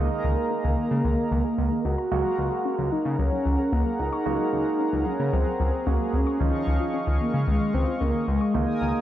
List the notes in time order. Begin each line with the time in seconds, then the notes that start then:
Already playing: G#3 A#3 D#4 G#4 A#4 D#5 A#5
0.11 D#3
0.24 C#2 D#3 A#3
0.37 G#4
0.51 A#3
0.64 C#2 D#3
0.78 D#3
0.91 C#3 G#3
1.04 C#2 D#3
1.18 D#3
1.31 C#2 D#3
1.45 G#4
1.58 C#2 A#3
1.71 D#3
1.85 C#2 F#4
1.98 A#5
2.11 C#2 F#3 G#3 A#3 F#4 G#4 A#4 F#5 A#5
2.25 F#3
2.38 C#2 F#3
2.52 G#4
2.65 C#4
2.78 C#2 F#3
2.92 F#3 D#4
3.05 C#3 A#3
3.19 C#2 F#3 C#4
3.32 F#3
3.45 C#2 F#3
3.59 G#4
3.72 C#2 A#3 C#4
3.86 F#3
3.99 C#2 D#4
4.12 C#6
4.26 C#2 F#3 G#3 A#3 F#4
4.39 F#3
4.53 C#2 F#3
4.66 G#4
4.79 C#4
4.93 C#2 F#3
5.06 F#3 C#4
5.19 C#3 A#3
5.33 C#2 F#3 C4
5.46 F#3
5.60 C#2 F#3
5.73 G#4
5.86 C#2 G#3 A#3 C#4 F#4
6.00 F#3
6.13 C#2 C#4
6.27 C#6
6.40 C#2 D#3 F3 C#4 D#4 D#5 F5 C#6
6.54 D#3
6.67 C#2 D#3
6.80 F4
6.94 C#4
7.07 C#2 D#3
7.20 D#3 A#3
7.34 C#3 G#3
7.47 C#2 D#3 G#3
7.61 D#3
7.74 C#2 D#3 C4
7.87 F4
8.01 C#2 A#3 C#4
8.14 D#3
8.28 C#2 G#3
8.41 C#6
8.54 C#2 D#3 G#3 A#3 D#4 A#4 G#5 D#6
8.68 D#3
8.81 C#2 D#3
8.95 G#4